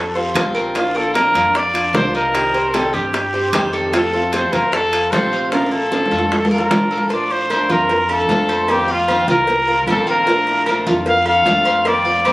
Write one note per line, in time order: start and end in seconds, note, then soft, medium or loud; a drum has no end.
0.00 0.31 F2 medium
0.00 0.14 A4 medium
0.00 0.24 A4 medium
0.15 0.35 G3 soft
0.15 0.35 C4 soft
0.15 0.35 F4 soft
0.15 0.54 C5 medium
0.15 high bongo soft
0.34 1.29 A#1 medium
0.34 0.74 F3 medium
0.34 0.75 G3 medium
0.34 0.75 C4 medium
0.34 0.75 F4 medium
0.34 high bongo medium
0.34 low bongo medium
0.34 high timbale loud
0.34 low timbale medium
0.34 short guiro medium
0.55 0.74 A#4 medium
0.55 short guiro medium
0.75 0.94 F3 medium
0.75 0.95 A#3 medium
0.75 0.95 D4 medium
0.75 0.95 F4 medium
0.75 0.98 F4 medium
0.75 0.94 F4 medium
0.75 high bongo medium
0.75 high timbale medium
0.75 long guiro medium
0.95 1.15 A#3 soft
0.95 1.15 D4 soft
0.95 1.14 F4 soft
0.95 1.14 A4 medium
0.95 1.33 A#4 medium
1.14 1.34 F3 medium
1.14 1.34 A#3 medium
1.14 1.34 D4 medium
1.14 1.34 F4 medium
1.14 1.58 A#4 loud
1.14 high bongo medium
1.14 high timbale medium
1.14 short guiro medium
1.34 1.90 F2 medium
1.34 1.54 A#3 soft
1.34 1.54 D4 soft
1.34 1.54 F4 soft
1.34 1.54 D5 medium
1.34 high timbale medium
1.34 short guiro medium
1.54 1.95 D5 loud
1.54 1.94 F5 medium
1.54 muted steel-string acoustic guitar stroke medium
1.54 high bongo medium
1.54 long guiro medium
1.74 1.92 A#3 soft
1.74 1.93 D4 soft
1.74 1.93 F4 medium
1.74 high timbale medium
1.93 2.88 C2 medium
1.93 2.33 F3 medium
1.93 2.33 A#3 medium
1.93 2.33 D4 medium
1.93 2.34 F4 medium
1.93 2.14 A#4 medium
1.93 2.13 C5 loud
1.93 high bongo medium
1.93 low bongo medium
1.93 low timbale medium
1.93 short guiro medium
2.14 2.76 A#4 loud
2.14 2.53 D#5 medium
2.14 short guiro medium
2.33 2.53 C3 medium
2.33 2.53 D#3 medium
2.33 2.54 G3 medium
2.33 2.53 C4 medium
2.33 2.53 G4 medium
2.33 high bongo medium
2.33 high timbale medium
2.33 long guiro medium
2.54 2.73 G3 soft
2.54 2.73 C4 soft
2.54 2.73 G4 soft
2.54 2.93 C5 medium
2.54 high bongo soft
2.54 high timbale medium
2.73 2.93 C3 medium
2.73 2.93 D#3 medium
2.73 2.93 G3 medium
2.73 2.94 C4 medium
2.73 2.92 G4 medium
2.73 2.95 A4 medium
2.73 high bongo medium
2.73 high timbale medium
2.73 short guiro medium
2.93 3.49 G2 medium
2.93 3.13 G3 soft
2.93 3.13 C4 soft
2.93 3.13 G4 soft
2.93 3.32 G4 medium
2.93 3.73 G4 medium
2.93 high bongo soft
2.93 short guiro medium
3.13 muted steel-string acoustic guitar stroke medium
3.13 high bongo medium
3.13 high timbale medium
3.13 long guiro medium
3.33 3.53 G3 soft
3.33 3.53 C4 soft
3.33 3.52 G4 medium
3.33 3.72 C5 medium
3.33 high bongo soft
3.53 4.46 F2 medium
3.53 3.91 C3 medium
3.53 3.93 D#3 medium
3.53 3.93 G3 medium
3.53 3.93 C4 medium
3.53 3.93 G4 medium
3.53 high bongo medium
3.53 low bongo medium
3.53 high timbale loud
3.53 short guiro medium
3.73 3.92 A4 medium
3.73 short guiro medium
3.92 4.12 C3 medium
3.92 4.12 F3 medium
3.92 4.12 A3 medium
3.92 4.13 C4 medium
3.92 4.12 F4 medium
3.92 4.31 A4 medium
3.92 high bongo medium
3.92 high timbale medium
3.92 long guiro medium
4.13 4.33 A3 soft
4.13 4.33 C4 soft
4.13 4.32 F4 soft
4.13 4.52 A4 medium
4.32 4.52 C3 medium
4.32 4.52 F3 medium
4.32 4.53 A3 medium
4.32 4.53 C4 medium
4.32 4.51 F4 medium
4.32 4.54 C5 loud
4.32 high bongo medium
4.32 high timbale medium
4.32 short guiro medium
4.52 5.08 F2 medium
4.52 4.73 A3 soft
4.52 4.72 C4 soft
4.52 4.72 F4 medium
4.52 4.73 A#4 medium
4.52 4.72 C5 medium
4.52 high timbale medium
4.52 short guiro medium
4.72 5.13 A4 loud
4.72 5.11 F5 medium
4.72 muted steel-string acoustic guitar stroke medium
4.72 high bongo medium
4.72 long guiro medium
4.92 5.13 A3 soft
4.92 5.12 C4 soft
4.92 5.11 F4 medium
4.92 high timbale loud
5.12 6.06 A#1 medium
5.12 5.51 C3 medium
5.12 5.51 F3 medium
5.12 5.51 A3 medium
5.12 5.52 C4 medium
5.12 5.52 F4 medium
5.12 5.31 A4 medium
5.12 5.52 C5 medium
5.12 high bongo medium
5.12 low bongo medium
5.12 low timbale medium
5.12 short guiro medium
5.32 5.71 F5 medium
5.32 short guiro medium
5.52 5.71 F3 medium
5.52 5.71 A3 medium
5.52 5.72 D4 medium
5.52 5.71 F4 medium
5.52 5.70 A#4 medium
5.52 high bongo medium
5.52 high timbale medium
5.52 long guiro medium
5.66 high timbale medium
5.72 5.91 A3 soft
5.72 6.10 A#3 medium
5.72 5.92 D4 soft
5.72 5.91 F4 soft
5.72 6.48 A4 medium
5.72 high bongo soft
5.91 6.10 F3 medium
5.91 6.11 A3 medium
5.91 6.10 D4 medium
5.91 6.10 F4 medium
5.91 high bongo medium
5.91 high timbale medium
5.91 short guiro medium
6.06 low timbale medium
6.11 6.67 F2 medium
6.11 6.30 A3 soft
6.11 6.31 D4 soft
6.11 6.30 F4 soft
6.11 6.50 A4 medium
6.11 high bongo soft
6.11 short guiro medium
6.19 low timbale medium
6.31 muted steel-string acoustic guitar stroke medium
6.31 high bongo medium
6.31 low timbale medium
6.31 long guiro medium
6.45 low timbale medium
6.51 6.71 A3 soft
6.51 6.71 D4 soft
6.51 6.70 F4 soft
6.51 6.89 A#4 medium
6.51 7.08 A#4 medium
6.51 high bongo soft
6.58 low timbale medium
6.71 7.64 A#1 medium
6.71 7.08 F3 medium
6.71 7.10 D4 medium
6.71 7.10 F4 medium
6.71 high bongo medium
6.71 low bongo medium
6.71 low timbale loud
6.71 short guiro medium
6.91 7.10 A4 medium
6.91 short guiro medium
6.98 low timbale medium
7.09 7.29 F3 medium
7.09 7.29 A3 medium
7.09 7.30 D4 medium
7.09 7.49 F4 medium
7.09 7.28 F4 medium
7.09 7.33 D5 loud
7.09 cowbell loud
7.09 long guiro medium
7.29 7.49 A3 soft
7.29 7.50 D4 soft
7.29 7.49 F4 soft
7.29 7.73 C5 loud
7.29 low agogo medium
7.50 7.69 F3 medium
7.50 7.69 A3 medium
7.50 7.69 D4 medium
7.50 7.68 F4 medium
7.50 7.69 A#4 medium
7.50 cowbell medium
7.50 low timbale medium
7.50 low agogo loud
7.50 short guiro medium
7.69 8.25 F2 medium
7.69 7.89 A3 soft
7.69 7.89 D4 soft
7.69 7.88 F4 soft
7.69 8.08 F4 medium
7.69 8.10 A#4 loud
7.69 cowbell medium
7.69 short guiro medium
7.89 muted steel-string acoustic guitar stroke medium
7.89 cowbell loud
7.89 low agogo medium
7.89 long guiro medium
8.09 8.29 A3 soft
8.09 8.29 D4 medium
8.09 8.29 F4 medium
8.09 8.47 A4 medium
8.09 8.72 A4 medium
8.09 low agogo loud
8.29 9.22 F2 medium
8.29 8.68 F3 medium
8.29 8.69 A3 medium
8.29 8.69 D4 medium
8.29 8.69 F4 medium
8.29 cowbell medium
8.29 low timbale medium
8.29 short guiro medium
8.49 8.87 C5 medium
8.49 cowbell medium
8.49 low agogo medium
8.49 short guiro medium
8.68 8.88 D#3 medium
8.68 8.88 A#3 medium
8.68 8.88 C4 medium
8.68 8.87 F4 medium
8.68 8.93 G4 medium
8.68 cowbell loud
8.68 low agogo loud
8.68 long guiro medium
8.88 9.08 A#3 soft
8.88 9.08 C4 soft
8.88 9.07 F4 soft
8.88 9.29 F4 loud
8.88 9.07 F5 medium
9.08 9.27 D#3 medium
9.08 9.28 A#3 medium
9.08 9.28 C4 medium
9.08 9.27 F4 medium
9.08 9.27 C5 medium
9.08 cowbell medium
9.08 low timbale medium
9.08 low agogo loud
9.08 short guiro medium
9.28 9.83 C2 medium
9.28 9.48 A#3 soft
9.28 9.48 C4 soft
9.28 9.47 F4 soft
9.28 9.67 F4 medium
9.28 9.84 A#4 loud
9.28 cowbell medium
9.28 short guiro medium
9.47 muted steel-string acoustic guitar stroke medium
9.47 cowbell loud
9.47 low agogo medium
9.47 long guiro medium
9.68 9.88 A#3 soft
9.68 9.87 C4 soft
9.68 9.87 F4 medium
9.68 10.06 A#4 medium
9.87 10.80 A#1 medium
9.87 10.27 D#3 medium
9.87 10.27 A#3 medium
9.87 10.27 C4 medium
9.87 10.28 F4 medium
9.87 10.07 A4 loud
9.87 cowbell medium
9.87 low timbale medium
9.87 low agogo loud
9.87 short guiro medium
10.07 10.77 A#4 loud
10.07 10.26 F5 medium
10.07 short guiro medium
10.27 10.46 F3 medium
10.27 10.47 A3 medium
10.27 10.47 D4 medium
10.27 10.65 F4 medium
10.27 10.47 F4 medium
10.27 cowbell loud
10.27 long guiro medium
10.47 10.67 A3 soft
10.47 10.67 D4 soft
10.47 10.66 F4 soft
10.47 low agogo medium
10.66 10.86 F3 medium
10.66 10.87 A3 medium
10.66 10.87 D4 medium
10.66 10.86 F4 medium
10.66 10.86 A#4 medium
10.66 cowbell medium
10.66 low timbale medium
10.66 low agogo loud
10.66 short guiro medium
10.86 11.42 F2 medium
10.86 11.06 A3 soft
10.86 11.06 D4 soft
10.86 11.25 F4 medium
10.86 11.06 F4 soft
10.86 cowbell medium
10.86 short guiro medium
11.06 11.26 F5 loud
11.06 muted steel-string acoustic guitar stroke medium
11.06 cowbell loud
11.06 low agogo medium
11.06 long guiro medium
11.26 11.45 A3 soft
11.26 11.46 D4 soft
11.26 11.45 F4 medium
11.26 11.64 A4 medium
11.26 11.89 F5 loud
11.26 low agogo loud
11.45 12.33 F2 medium
11.45 11.84 F3 medium
11.45 11.85 A3 medium
11.45 11.85 D4 medium
11.45 11.85 F4 medium
11.45 cowbell medium
11.45 low timbale medium
11.45 short guiro medium
11.65 12.04 C5 medium
11.65 cowbell medium
11.65 low agogo medium
11.65 short guiro medium
11.85 12.04 D#3 medium
11.85 12.05 A#3 medium
11.85 12.05 C4 medium
11.85 12.04 F4 medium
11.85 12.33 D5 loud
11.85 cowbell loud
11.85 low agogo loud
11.85 long guiro medium
12.05 12.25 A#3 soft
12.05 12.25 C4 soft
12.05 12.24 F4 soft
12.05 12.24 F5 medium
12.25 12.33 D#3 medium
12.25 12.33 A#3 medium
12.25 12.33 C4 medium
12.25 12.33 F4 medium
12.25 12.33 C5 medium
12.25 cowbell medium
12.25 low timbale medium
12.25 low agogo medium
12.25 short guiro medium